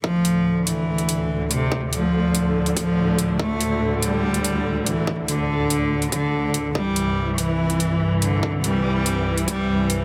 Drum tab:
HH |--x---x--xx---x-|--x---x--xx---x-|--x---x--xx---x-|--x---x--xx---x-|
BD |o---------------|o---------o-----|o---------------|o---------o-----|

HH |--x---x--xx---x-|--x---x--xx---x-|
BD |o---------------|o---------o-----|